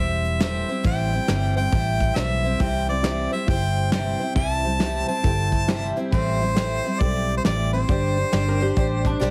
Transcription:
Already playing: E1 G3 C4 E4
0.00 C5 E5
0.24 closed hi-hat
0.40 A2 E3 G3 C4 E4 C5 E5, snare, closed hi-hat
0.68 G3 C4 E4 C5, closed hi-hat
0.83 A1 A2 E3 G3 C4 E4 C5 G5, kick, closed hi-hat
1.12 G3 C4 E4 C5, closed hi-hat
1.28 G1 A2 E3 G3 C4 E4 C5, snare, closed hi-hat
1.56 G3 C4 E4 C5 G5, closed hi-hat
1.71 A1 G3 C4 E4 C5, kick, closed hi-hat
2.00 kick, closed hi-hat
2.16 B1 A2 E3 G3 C4 E4 C5 E5, snare, closed hi-hat
2.44 G3 C4 E4 C5, closed hi-hat
2.59 C2 C3 E3 G3 C4 E4 G4 C5 G5, kick, closed hi-hat
2.88 G3 C4 E4 C5 D5, closed hi-hat
3.03 C3 E3 G3 C4 E4 G4 C5, snare, closed hi-hat
3.31 G3 C4 E4 C5 E5, closed hi-hat
3.47 G1 G3 C4 E4 G4 C5 G5, kick, closed hi-hat
3.51 C5
3.76 closed hi-hat
3.91 C3 E3 G3 C4 E4 G4 C5 G5, snare, closed hi-hat
4.19 G3 C4 E4 C5, closed hi-hat
4.35 C2 C3 E3 G3 C4 E4 G4 C5 A5, kick, closed hi-hat
4.63 G3 C4 E4 C5, closed hi-hat
4.79 C3 E3 G3 C4 E4 G4 C5, snare, closed hi-hat
5.07 G3 C4 E4 C5 A5, closed hi-hat
5.23 G1 G3 C4 E4 G4 A4 C5, kick, closed hi-hat
5.52 kick, closed hi-hat
5.68 C3 E3 G3 C4 E4 G4 C5, snare, closed hi-hat
5.96 G3 C4 E4 C5, closed hi-hat
6.11 A1 A2 E3 G3 C4 E4 G4 A4 C5, kick, closed hi-hat
6.40 G3 C4 E4 C5, closed hi-hat
6.55 A2 E3 G3 C4 E4 G4 A4 C5, snare, closed hi-hat
6.84 G3 C4 E4 C5, closed hi-hat
7.00 B1 G3 C4 E4 G4 A4 C5 D5, kick, closed hi-hat
7.29 closed hi-hat
7.37 C5
7.44 A1 A2 E3 G3 C4 E4 G4 A4 C5 D5, snare, closed hi-hat
7.72 G3 C4 E4 C5, closed hi-hat
7.88 G1 G3 D4 G4 C5 D5, kick, closed hi-hat
8.16 D4 G4 C5, closed hi-hat
8.32 G1 G3 D4 G4 C5 D5, snare, closed hi-hat
8.48 A#4
8.60 D4 G4 C5, closed hi-hat
8.77 A1 G3 D4 G4 C5 D5, kick, closed hi-hat
9.05 D4, kick, closed hi-hat
9.20 B1 G3 D4 G4 C5 D5, snare

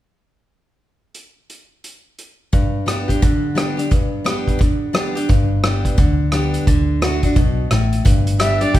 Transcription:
1.15 closed hi-hat
1.50 closed hi-hat
1.84 closed hi-hat
2.19 closed hi-hat
2.53 G2, kick, closed hi-hat
2.86 G3 B3 D4 G4, cross-stick, closed hi-hat
3.08 D4 G4, kick, closed hi-hat
3.22 D3, kick, closed hi-hat
3.55 G3 B3 D4 G4, cross-stick, closed hi-hat
3.77 D4 G4, closed hi-hat
3.91 G2, kick, closed hi-hat
4.24 G3 B3 D4 G4, cross-stick, closed hi-hat
4.48 kick, closed hi-hat
4.59 D3, kick, closed hi-hat
4.93 G3 B3 D4 G4, cross-stick, closed hi-hat
5.15 D4 G4, closed hi-hat
5.29 G1 G2, kick, closed hi-hat
5.64 G3 B3 D4 G4, cross-stick, closed hi-hat
5.85 kick, closed hi-hat
5.98 D2 D3, kick, closed hi-hat
6.32 G3 B3 D4 G4, cross-stick, closed hi-hat
6.54 closed hi-hat
6.67 D2 D3, kick, closed hi-hat
7.02 D3 A3 D4 F#4, cross-stick, closed hi-hat
7.23 D4 F#4, kick, closed hi-hat
7.36 B1 B2, kick, closed hi-hat
7.70 A1 A2, cross-stick, closed hi-hat
7.93 closed hi-hat
8.05 G1 G2, kick, closed hi-hat
8.27 closed hi-hat
8.39 G3 B3 D4 G4 E5, cross-stick, closed hi-hat
8.61 D4 G4 D5, closed hi-hat
8.74 D2 D3 G4, kick, closed hi-hat

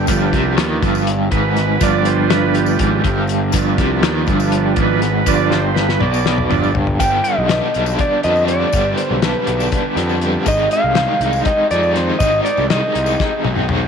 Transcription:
Already playing: G4
0.07 G1 G2 F3 B3 D4, kick, closed hi-hat, tambourine
0.33 C2 C3, kick, closed hi-hat
0.57 D#2 D#3, snare, closed hi-hat
0.80 G1 G2 F3 B3 D4, kick, closed hi-hat, tambourine
0.95 tambourine
1.07 closed hi-hat
1.32 G#1 G#2 B4, kick, closed hi-hat
1.56 snare, closed hi-hat, tambourine
1.81 G1 G2 F3 B3 D4 D5, kick, closed hi-hat, tambourine
2.05 C5, closed hi-hat
2.29 B4, snare, closed hi-hat
2.54 G4, closed hi-hat, tambourine
2.66 tambourine
2.78 G#1 G#2 F3 B3 D4, kick, closed hi-hat
3.04 G1 G2, kick, closed hi-hat
3.27 closed hi-hat, tambourine
3.52 G1 G2 F3 B3 D4, kick, closed hi-hat, tambourine
3.78 C2 C3, kick, snare, closed hi-hat
4.02 D#2 D#3, snare, closed hi-hat
4.27 G1 G2, kick, closed hi-hat, tambourine
4.40 tambourine
4.52 closed hi-hat
4.76 G#1 G#2 B3, kick, closed hi-hat
4.81 F3 D4 B4
5.02 snare, closed hi-hat, tambourine
5.26 G1 G2 F3 B3 D4 D5, kick, closed hi-hat, tambourine
5.49 C5, snare, tambourine
5.75 B4, snare
5.89 snare
6.00 B1 B2 D5, mid tom
6.14 tambourine
6.26 snare
6.38 mid tom
6.50 G1 G2 F3 B3 D4, mid tom, tambourine
6.63 tambourine
6.75 floor tom
6.87 floor tom
6.99 G1 G2 D3 G3 B3 D4 G4 G5, kick, closed hi-hat, tambourine
7.24 D#5, closed hi-hat, tambourine
7.38 B1
7.49 B1 D3 G3 B3 D4, snare, closed hi-hat, tambourine
7.74 B1 G3 B3 D4, closed hi-hat
7.86 tambourine
7.99 D5, kick, closed hi-hat
8.23 F2 G3 B3 D4 D#5, closed hi-hat
8.35 tambourine
8.47 G2 D3 G3 B3 D4 D5, closed hi-hat
8.72 G1 G2 D3 G3 B3 D4, kick, closed hi-hat, tambourine
8.97 C5, closed hi-hat, tambourine
9.11 B1
9.22 B1 D3 G3 B3 D4 B4, snare, closed hi-hat, tambourine
9.46 B1 G3 B3 D4, closed hi-hat
9.60 tambourine
9.72 kick, closed hi-hat
9.96 F2 G3 B3 D4, snare, closed hi-hat
10.09 tambourine
10.21 G2 D3 G3 B3 D4, closed hi-hat
10.46 G#1 G#2 D#3 G#3 C4 D#4 G4 D#5, kick, closed hi-hat, tambourine
10.71 F5, closed hi-hat, tambourine
10.84 C2
10.95 C2 D#3 G#3 C4 D#4, snare, closed hi-hat, tambourine
11.21 C2 G#3 C4 D#4, closed hi-hat
11.33 tambourine
11.45 D#5, kick, closed hi-hat
11.71 F2 G#3 C4 D#4 D5, closed hi-hat
11.83 tambourine
11.95 G#2 D#3 G#3 C4 D#4 C5, snare, closed hi-hat
12.19 G#1 G#2 D#3 G#3 C4 D#4 D#5, kick, closed hi-hat, tambourine
12.45 D5, closed hi-hat, tambourine
12.57 C2, tambourine
12.69 C2 D#3 G#3 C4 D#4 D#5, snare, closed hi-hat
12.94 C2 G#3 C4 D#4, closed hi-hat
13.06 tambourine
13.20 kick, snare
13.44 B1 G#3 C4 D#4, high tom
13.56 mid tom
13.68 G#2 D#3 G#3 C4 D#4, mid tom

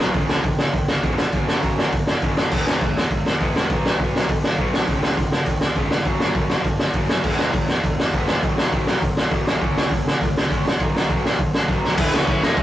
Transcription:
Already playing: B2 F#3 B3
0.00 B1
0.14 C#2 C#3 E3 G#3, kick, open hi-hat
0.29 C#2, snare
0.44 C#2 C#3 E3, kick, open hi-hat
0.58 C#3, snare
0.73 C#2 C#3 E3, kick, open hi-hat
0.88 snare
1.03 E2 C#3 E3 G#3, kick, open hi-hat
1.18 F#1, snare
1.32 F#1 F#2 C#3 F#3, kick, open hi-hat
1.48 snare
1.62 F#1 F#2 C#3 F#3, kick, open hi-hat
1.78 F#1, snare
1.92 F#1 F#2 C#3, kick, open hi-hat
2.07 snare
2.22 F#1 F#2 C#3 F#3, kick, open hi-hat
2.37 F#1, snare
2.52 E1 E3 G#3 B3, kick, crash
2.67 E1, snare
2.81 E1 E3 G#3, kick, open hi-hat
2.97 E2, snare
3.11 E1 E3 G#3, kick, open hi-hat
3.26 snare
3.40 E1 E3 G#3 B3, kick, open hi-hat
3.56 E1, snare
3.70 B1 B2 F#3 B3, kick, open hi-hat
3.85 snare
3.99 B1 B2 F#3 B3, kick, open hi-hat
4.16 B1, snare
4.29 B1 B2 F#3, kick, open hi-hat
4.44 snare
4.58 B1 B2 F#3 B3, kick, open hi-hat
4.74 B1, snare
4.88 C#2 C#3 E3 G#3, kick, open hi-hat
5.03 C#2, snare
5.17 C#2 C#3 E3, kick, open hi-hat
5.32 C#3, snare
5.46 C#2 C#3 E3, kick, open hi-hat
5.61 snare
5.75 C#2 C#3 E3 G#3, kick, open hi-hat
5.90 F#1, snare
6.05 F#1 F#2 C#3 F#3, kick, open hi-hat
6.20 snare
6.35 F#1 F#2 C#3 F#3, kick, open hi-hat
6.49 F#1, snare
6.64 F#1 F#2 C#3, kick, open hi-hat
6.79 snare
6.93 F#1 F#2 C#3 F#3, kick, open hi-hat
7.09 F#1, snare
7.24 E1 E3 G#3 B3, kick, crash
7.39 E1, snare
7.53 E1 E3 G#3, kick, open hi-hat
7.68 E2, snare
7.84 E1 E3 G#3, kick, open hi-hat
7.99 snare
8.13 E1 E3 G#3 B3, kick, open hi-hat
8.28 E1, snare
8.42 B1 B2 D#3 F#3, kick, open hi-hat
8.58 snare
8.72 B1 B2 D#3 F#3, kick, open hi-hat
8.87 B1, snare
9.02 B1 B2 D#3, kick, open hi-hat
9.17 snare
9.31 B1 B2 D#3 F#3, kick, open hi-hat
9.46 B1, snare
9.61 C#2 C#3 G#3 C#4, kick, open hi-hat
9.76 C#2, snare
9.91 C#2 C#3 G#3, kick, open hi-hat
10.05 C#3, snare
10.21 C#2 C#3 G#3, kick, open hi-hat
10.37 snare
10.49 C#2 C#3 G#3 C#4, kick, open hi-hat
10.64 B1, snare
10.80 B1 B2 D#3 F#3, kick, open hi-hat
10.96 snare
11.10 B1 B2 D#3 F#3, kick, open hi-hat
11.22 B1, snare
11.39 B1 B2 D#3, kick, open hi-hat
11.54 snare
11.68 B1 B2 D#3 F#3, kick, open hi-hat
11.83 B1, snare
11.97 E1 E3 G#3 B3 E4 B4, kick, crash
12.11 C#2 C#4, snare
12.17 C#5
12.27 B1 E3 G#3 B3 E4, kick, crash
12.41 E1 D#4 D#5, snare
12.57 B1 E3 G#3 B3 E4, kick, crash

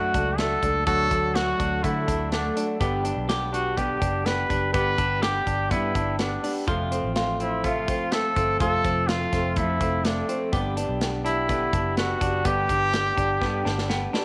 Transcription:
Already playing: F#2 D3 F#3 A3 D4 F#4
0.14 C#2 A3 D4 F#4, kick, closed hi-hat
0.38 F#3 A3 D4 F#4 A4, snare, closed hi-hat
0.63 C#2 A3 D4 F#4, kick, closed hi-hat
0.87 D2 D3 F#3 A3 D4 F#4 A4, kick, closed hi-hat
1.11 D2 A3 D4 F#4, kick, closed hi-hat
1.35 F#3 A3 D4 F#4, snare, closed hi-hat
1.59 D2 A3 D4 F#4, kick, closed hi-hat
1.83 D3 F#3 A3 D4 E4 F#4, kick, closed hi-hat
2.08 D2 A3 D4 F#4, kick, closed hi-hat
2.32 F#3 A3 D4 F#4, snare, closed hi-hat
2.56 A3 D4 F#4, closed hi-hat
2.80 G1 G2 D3 G3 B3 D4 G4, kick, closed hi-hat
3.04 G3 B3 D4 G4, closed hi-hat
3.17 B1
3.28 G3 B3 D4 G4, snare, closed hi-hat
3.52 G3 B3 D4 F#4 G4, closed hi-hat
3.77 G2 D3 G3 B3 D4 G4, kick, closed hi-hat
4.00 F#1 G3 B3 D4 G4, kick, closed hi-hat
4.24 G3 B3 D4 G4 B4, snare, closed hi-hat
4.49 F#1 G3 B3 D4 G4, kick, closed hi-hat
4.73 G1 G2 D3 G3 B3 D4 G4 B4, kick, closed hi-hat
4.97 G1 B3 D4, kick, closed hi-hat
5.21 G3 B3 D4 G4, snare, closed hi-hat
5.46 G1 G3 B3 D4 G4, kick, closed hi-hat
5.70 G2 D3 G3 B3 D4 E4 G4, kick, closed hi-hat
5.94 G1 G3 B3 D4 G4, kick, closed hi-hat
6.18 G3 B3 D4 G4, snare, closed hi-hat
6.43 G3 B3 D4 G4, open hi-hat
6.67 F1 F2 C3 F3 A3 C4 F4, kick, closed hi-hat
6.91 F3 A3 C4 F4, closed hi-hat
7.04 A1
7.15 F3 A3 C4 F4, snare, closed hi-hat
7.40 F3 A3 C4 E4 F4, closed hi-hat
7.64 F2 C3 F3 A3 C4 F4, kick, closed hi-hat
7.88 E1 F3 A3 C4 F4, kick, closed hi-hat
8.12 F3 A3 C4 F4 A4, snare, closed hi-hat
8.36 G1 F3 A3 C4 F4, kick, closed hi-hat
8.60 F1 F2 C3 F3 A3 C4 F4 A4, kick, closed hi-hat
8.85 F1 F3 A3 C4, kick, closed hi-hat
9.08 F3 A3 C4 F4, snare, closed hi-hat
9.32 F1 F3 A3 C4 F4, kick, snare, closed hi-hat
9.56 F2 C3 F3 A3 C4 E4 F4, kick, closed hi-hat
9.80 F1 F3 A3 C4 F4, kick, closed hi-hat
10.04 F3 A3 C4 D4 F4, snare, closed hi-hat
10.28 F3 A3 C4 F4, closed hi-hat
10.52 G1 G2 D3 G3 B3 D4 G4, kick, closed hi-hat
10.77 G3 B3 D4 G4, closed hi-hat
10.89 B1
11.01 G3 B3 D4 G4, snare, closed hi-hat
11.25 G3 B3 D4 E4 G4, closed hi-hat
11.49 G2 D3 G3 B3 D4 G4, kick, closed hi-hat
11.73 F#1 G3 B3 D4 G4, kick, closed hi-hat
11.97 G3 B3 D4 F#4 G4, snare, closed hi-hat
12.21 F#1 G3 B3 D4 G4, kick, closed hi-hat
12.45 G1 G2 D3 G3 B3 D4 G4, kick, closed hi-hat
12.69 G1 G3 D4 G4, kick, closed hi-hat
12.94 G3 B3 D4 G4, snare, closed hi-hat
13.18 G1 G3 B3 D4 G4, kick, closed hi-hat
13.42 G2 D3 G3 B3 D4 G4, kick, snare
13.65 G1 G3 B3 D4 G4, snare
13.78 snare
13.89 G3 B3 D4 G4, snare
14.14 G3 B3 D4 G4, snare

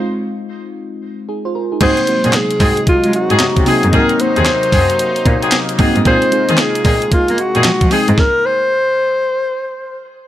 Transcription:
Already playing: G#3 C4 D#4 F4
1.29 D#4 G#4
1.45 F4 C5
1.55 F4 A#4
1.72 D#4 G#4
1.81 G#2 C3 F#3 G#3 A#3 C4 D#4 F#4 G#4 C5, kick, closed hi-hat, crash
1.97 closed hi-hat
2.07 A#3 C4 D#4 F#4, closed hi-hat
2.24 A#2 C4 F#4 G#4, closed hi-hat
2.33 G#4, snare, clap, closed hi-hat
2.51 closed hi-hat
2.60 G#2 C4 F#4 G#4, kick, open hi-hat
2.77 closed hi-hat
2.87 G#3 F4, kick, closed hi-hat
3.04 G#3, closed hi-hat
3.13 F#4, closed hi-hat
3.30 G#2 C4 F#4 G#4, closed hi-hat
3.39 C3, snare, clap, closed hi-hat
3.56 C3, kick, closed hi-hat
3.66 A#3 C4 D#4 F#4 G#4, open hi-hat
3.83 F#2, closed hi-hat
3.92 G#2 A#3 C4 D#4 F#4 G#4 A#4, kick, closed hi-hat
4.09 closed hi-hat
4.20 A#3 C4 D#4 F#4 C5, closed hi-hat
4.36 D#2 C4 F#4 G#4, closed hi-hat
4.45 snare, clap, closed hi-hat
4.63 closed hi-hat
4.72 F#2 C4 F#4 G#4, kick, open hi-hat
4.90 closed hi-hat
4.99 closed hi-hat
5.16 closed hi-hat
5.26 A#2, kick, closed hi-hat
5.42 C4 F#4 G#4, closed hi-hat
5.51 snare, clap, closed hi-hat
5.69 closed hi-hat
5.78 G#2 A#3 C4 D#4 F#4 G#4, kick, open hi-hat
5.96 G#2, closed hi-hat
6.05 A#2 G#3 C4 D#4 F4 G#4 C5, kick, closed hi-hat
6.22 closed hi-hat
6.32 G#3 C4 D#4 G#4, closed hi-hat
6.48 D#3 C4 D#4 G#4, closed hi-hat
6.57 G#4, snare, clap, closed hi-hat
6.75 closed hi-hat
6.85 A#2 C4 D#4 G#4, kick, open hi-hat
7.02 closed hi-hat
7.12 A#3 F4, kick, closed hi-hat
7.28 A#3, closed hi-hat
7.38 F#4, closed hi-hat
7.55 A#2 C4 D#4 G#4, closed hi-hat
7.64 F3, snare, clap, closed hi-hat
7.81 F3, kick, closed hi-hat
7.91 G#3 C4 D#4 G#4, open hi-hat
8.08 G#2, closed hi-hat
8.18 A#4, kick, snare
8.46 C5

